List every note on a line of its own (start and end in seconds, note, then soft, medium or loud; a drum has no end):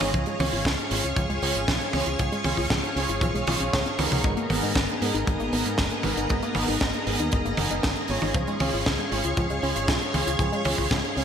0.00 0.11 G#1 medium
0.00 0.10 B3 medium
0.00 0.37 C#4 medium
0.00 0.14 D#4 medium
0.00 0.37 F4 medium
0.00 0.37 G#4 medium
0.00 4.21 G#4 medium
0.00 0.37 C#5 medium
0.00 0.10 D#5 medium
0.00 0.10 A#5 medium
0.00 open hi-hat medium
0.00 high tom medium
0.14 0.23 C#2 medium
0.14 0.26 F3 loud
0.14 4.21 C#5 medium
0.14 4.21 F5 medium
0.14 4.21 C#6 medium
0.14 kick loud
0.14 closed hi-hat medium
0.26 0.39 G#3 loud
0.26 closed hi-hat soft
0.40 0.49 C#2 medium
0.40 0.51 C#4 loud
0.40 0.60 C#4 medium
0.40 0.60 F4 medium
0.40 0.60 G#4 medium
0.40 0.60 C#5 medium
0.40 open hi-hat loud
0.40 high tom medium
0.51 0.62 G#1 medium
0.51 0.65 F4 medium
0.51 open hi-hat medium
0.65 0.75 C#2 loud
0.65 0.78 F3 medium
0.65 kick loud
0.65 snare loud
0.79 0.91 G#3 medium
0.79 closed hi-hat soft
0.91 1.00 G#1 medium
0.91 1.39 C#4 medium
0.91 1.03 C#4 medium
0.91 1.39 F4 medium
0.91 1.39 G#4 medium
0.91 1.39 C#5 medium
0.91 open hi-hat loud
1.03 1.13 C#2 medium
1.03 1.16 F4 medium
1.03 closed hi-hat medium
1.16 1.26 C#2 loud
1.16 1.28 F3 loud
1.16 kick loud
1.16 closed hi-hat medium
1.30 1.39 C#2 medium
1.30 1.42 G#3 loud
1.30 closed hi-hat soft
1.42 1.52 C#2 medium
1.42 1.54 C#4 loud
1.42 1.75 C#4 medium
1.42 1.75 F4 medium
1.42 1.75 G#4 medium
1.42 1.75 C#5 medium
1.42 open hi-hat loud
1.55 1.64 G#1 medium
1.55 1.67 F4 medium
1.55 closed hi-hat medium
1.68 1.77 B1 medium
1.68 1.80 F3 medium
1.68 kick loud
1.68 snare loud
1.68 closed hi-hat medium
1.81 1.93 G#3 medium
1.81 closed hi-hat soft
1.93 2.03 C#2 medium
1.93 2.42 C#4 medium
1.93 2.05 C#4 medium
1.93 2.42 F4 medium
1.93 2.42 G#4 medium
1.93 2.42 C#5 medium
1.93 open hi-hat loud
1.93 high tom medium
2.06 2.16 C#2 medium
2.06 2.19 F4 medium
2.06 closed hi-hat medium
2.19 2.29 C#2 medium
2.19 2.31 F3 loud
2.19 kick loud
2.19 closed hi-hat medium
2.32 2.44 G#3 loud
2.32 closed hi-hat soft
2.44 2.54 C#2 medium
2.44 2.56 C#4 loud
2.44 2.65 C#4 medium
2.44 2.65 F4 medium
2.44 2.65 G#4 medium
2.44 2.65 C#5 medium
2.44 open hi-hat loud
2.44 high tom medium
2.57 2.67 C#2 medium
2.57 2.70 F4 medium
2.57 kick medium
2.57 open hi-hat medium
2.70 2.80 C#2 loud
2.70 2.83 F3 medium
2.70 kick loud
2.70 snare loud
2.83 2.96 G#3 medium
2.83 closed hi-hat soft
2.96 3.05 C#2 medium
2.96 3.08 C#4 medium
2.96 3.45 C#4 medium
2.96 3.45 F4 medium
2.96 3.45 G#4 medium
2.96 3.45 C#5 medium
2.96 open hi-hat loud
3.09 3.18 G#1 medium
3.09 3.21 F4 medium
3.09 closed hi-hat medium
3.21 3.31 B1 loud
3.21 3.33 F3 loud
3.21 kick loud
3.21 closed hi-hat medium
3.21 high tom medium
3.35 3.44 B1 medium
3.35 3.47 G#3 medium
3.35 closed hi-hat soft
3.47 3.57 B1 medium
3.47 3.80 C#4 medium
3.47 3.60 F4 medium
3.47 3.80 F4 medium
3.47 3.80 G#4 medium
3.47 3.80 C#5 medium
3.47 open hi-hat loud
3.47 high tom medium
3.60 3.70 B1 medium
3.60 3.73 C#4 medium
3.60 closed hi-hat medium
3.73 3.83 C#2 loud
3.73 3.85 C#5 loud
3.73 kick loud
3.73 snare loud
3.73 closed hi-hat medium
3.86 3.97 C#4 medium
3.86 closed hi-hat soft
3.99 4.08 C#2 medium
3.99 4.47 B3 medium
3.99 4.47 D#4 medium
3.99 4.10 F4 medium
3.99 4.47 G#4 medium
3.99 4.47 A#4 medium
3.99 open hi-hat loud
3.99 high tom medium
4.11 4.21 C#2 medium
4.11 4.23 F3 medium
4.11 open hi-hat medium
4.11 mid tom medium
4.24 4.34 G#1 medium
4.24 4.36 G#3 loud
4.24 8.31 B3 medium
4.24 11.24 G#4 medium
4.24 8.31 D#5 medium
4.24 8.31 A#5 medium
4.24 kick loud
4.37 4.49 A#3 loud
4.37 closed hi-hat soft
4.50 4.59 G#1 medium
4.50 4.62 B3 loud
4.50 4.70 B3 medium
4.50 4.70 D#4 medium
4.50 4.70 G#4 medium
4.50 4.70 A#4 medium
4.50 open hi-hat loud
4.50 high tom medium
4.63 4.72 G#2 medium
4.63 4.75 D#4 medium
4.63 open hi-hat medium
4.75 4.85 G#1 loud
4.75 4.88 G#3 medium
4.75 kick loud
4.75 snare loud
4.89 5.01 A#3 medium
4.89 closed hi-hat soft
5.01 5.11 G#2 medium
5.01 5.13 B3 medium
5.01 5.50 B3 medium
5.01 5.50 D#4 medium
5.01 5.50 G#4 medium
5.01 5.50 A#4 medium
5.01 open hi-hat loud
5.14 5.23 G#1 medium
5.14 5.26 D#4 medium
5.14 closed hi-hat medium
5.27 5.36 G#1 loud
5.27 5.38 G#3 loud
5.27 kick loud
5.27 closed hi-hat medium
5.40 5.49 G#1 medium
5.40 5.52 A#3 loud
5.40 closed hi-hat soft
5.53 5.62 G#1 medium
5.53 5.64 B3 loud
5.53 5.85 B3 medium
5.53 5.85 D#4 medium
5.53 5.85 G#4 medium
5.53 5.85 A#4 medium
5.53 open hi-hat loud
5.66 5.75 G#2 medium
5.66 5.78 D#4 medium
5.66 closed hi-hat medium
5.78 5.88 F#1 medium
5.78 5.91 G#3 medium
5.78 kick loud
5.78 snare loud
5.78 closed hi-hat medium
5.90 6.03 A#3 medium
5.90 closed hi-hat soft
6.03 6.13 G#1 medium
6.03 6.52 B3 medium
6.03 6.16 B3 medium
6.03 6.52 D#4 medium
6.03 6.52 G#4 medium
6.03 6.52 A#4 medium
6.03 open hi-hat loud
6.03 high tom medium
6.17 6.26 G#1 medium
6.17 6.29 D#4 medium
6.17 closed hi-hat medium
6.29 6.39 G#1 medium
6.29 6.41 G#3 loud
6.29 kick loud
6.29 closed hi-hat medium
6.43 6.55 A#3 loud
6.43 closed hi-hat soft
6.55 6.65 G#1 medium
6.55 6.75 B3 medium
6.55 6.67 B3 loud
6.55 6.75 D#4 medium
6.55 6.76 G#4 medium
6.55 6.76 A#4 medium
6.55 open hi-hat loud
6.55 high tom medium
6.67 6.77 G#1 medium
6.67 6.80 D#4 medium
6.67 open hi-hat medium
6.80 6.90 G#1 loud
6.80 6.93 G#3 medium
6.80 kick loud
6.80 snare loud
6.80 closed hi-hat medium
6.93 7.06 A#3 medium
6.93 closed hi-hat soft
7.07 7.16 G#1 medium
7.07 7.55 B3 medium
7.07 7.18 B3 medium
7.07 7.55 D#4 medium
7.07 7.55 G#4 medium
7.07 7.55 A#4 medium
7.07 open hi-hat loud
7.19 7.29 D#2 medium
7.19 7.32 D#4 medium
7.19 closed hi-hat medium
7.32 7.42 F#1 loud
7.32 7.44 G#3 loud
7.32 kick loud
7.32 closed hi-hat medium
7.45 7.54 F#1 medium
7.45 7.57 A#3 loud
7.45 closed hi-hat soft
7.57 7.67 F#1 medium
7.57 7.90 B3 medium
7.57 7.69 B3 loud
7.57 7.90 D#4 medium
7.57 7.90 G#4 medium
7.57 7.90 A#4 medium
7.57 open hi-hat loud
7.57 high tom medium
7.71 7.80 F#1 medium
7.71 7.83 D#4 medium
7.71 closed hi-hat medium
7.83 7.93 G#1 loud
7.83 7.96 G#3 medium
7.83 kick loud
7.83 snare loud
7.83 closed hi-hat medium
7.96 8.09 A#3 medium
7.96 closed hi-hat soft
8.08 8.18 G#1 medium
8.08 8.21 B3 medium
8.08 8.57 C#4 medium
8.08 8.57 F4 medium
8.08 8.57 G#4 medium
8.08 8.57 C#5 medium
8.08 open hi-hat loud
8.22 8.31 G#1 medium
8.22 8.34 D#4 medium
8.22 open hi-hat medium
8.22 high tom medium
8.34 8.44 C#2 loud
8.34 8.46 F3 loud
8.34 11.24 C#5 medium
8.34 11.24 F5 medium
8.34 11.24 C#6 medium
8.34 kick loud
8.47 8.60 G#3 loud
8.47 closed hi-hat soft
8.60 8.70 C#2 medium
8.60 8.81 C#4 medium
8.60 8.72 C#4 loud
8.60 8.81 F4 medium
8.60 8.81 G#4 medium
8.60 8.81 C#5 medium
8.60 open hi-hat medium
8.60 high tom medium
8.73 8.82 G#1 medium
8.73 8.86 F4 medium
8.73 open hi-hat medium
8.86 8.95 C#2 loud
8.86 8.98 F3 medium
8.86 kick loud
8.86 snare loud
8.98 9.11 G#3 medium
8.98 closed hi-hat soft
9.12 9.21 G#1 medium
9.12 9.60 C#4 medium
9.12 9.23 C#4 medium
9.12 9.60 F4 medium
9.12 9.60 G#4 medium
9.12 9.60 C#5 medium
9.12 open hi-hat loud
9.24 9.34 C#2 medium
9.24 9.37 F4 medium
9.24 closed hi-hat medium
9.37 9.47 C#2 loud
9.37 9.49 F3 loud
9.37 kick loud
9.37 closed hi-hat medium
9.50 9.59 C#2 medium
9.50 9.62 G#3 loud
9.50 closed hi-hat soft
9.63 9.72 C#2 medium
9.63 9.74 C#4 loud
9.63 9.95 C#4 medium
9.63 9.95 F4 medium
9.63 9.95 G#4 medium
9.63 9.95 C#5 medium
9.63 open hi-hat medium
9.76 9.85 G#1 medium
9.76 9.88 F4 medium
9.76 closed hi-hat medium
9.88 9.98 B1 loud
9.88 10.01 F3 medium
9.88 kick loud
9.88 snare loud
9.88 closed hi-hat medium
10.01 10.14 G#3 medium
10.01 closed hi-hat soft
10.14 10.23 C#2 medium
10.14 10.26 C#4 medium
10.14 10.63 C#4 medium
10.14 10.62 F4 medium
10.14 10.62 G#4 medium
10.14 10.63 C#5 medium
10.14 open hi-hat loud
10.14 high tom medium
10.27 10.36 C#2 medium
10.27 10.39 F4 medium
10.27 closed hi-hat medium
10.39 10.49 C#2 loud
10.39 10.51 F3 loud
10.39 kick loud
10.39 closed hi-hat medium
10.53 10.65 G#3 loud
10.53 closed hi-hat soft
10.65 10.75 C#2 medium
10.65 10.77 C#4 loud
10.65 10.86 C#4 medium
10.65 10.86 F4 medium
10.65 10.86 G#4 medium
10.65 10.86 C#5 medium
10.65 open hi-hat loud
10.65 high tom medium
10.78 10.88 C#2 medium
10.78 10.90 F4 medium
10.78 kick medium
10.78 open hi-hat medium
10.91 11.00 C#2 loud
10.91 11.03 F3 medium
10.91 kick loud
10.91 snare loud
11.04 11.16 G#3 medium
11.04 closed hi-hat soft
11.17 11.24 C#2 medium
11.17 11.24 C#4 medium
11.17 11.24 F4 medium
11.17 11.24 G#4 medium
11.17 11.24 C#5 medium
11.17 open hi-hat medium